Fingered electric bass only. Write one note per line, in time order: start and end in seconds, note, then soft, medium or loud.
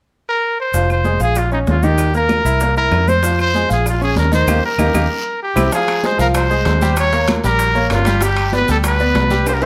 0.74 1.17 F1 medium
1.20 1.64 A#1 medium
1.67 2.40 D#2 medium
2.45 2.89 C2 medium
2.91 3.64 F2 medium
3.71 4.14 A#1 medium
4.17 4.46 D#2 medium
4.47 4.59 D#2 medium
4.78 4.90 D#2 medium
4.94 5.06 D#2 medium
5.56 5.68 C2 medium
6.19 6.63 C2 medium
6.66 7.38 D#2 medium
7.44 7.88 A#1 medium
7.90 8.63 G1 medium
8.69 9.12 D2 medium
9.15 9.65 C2 medium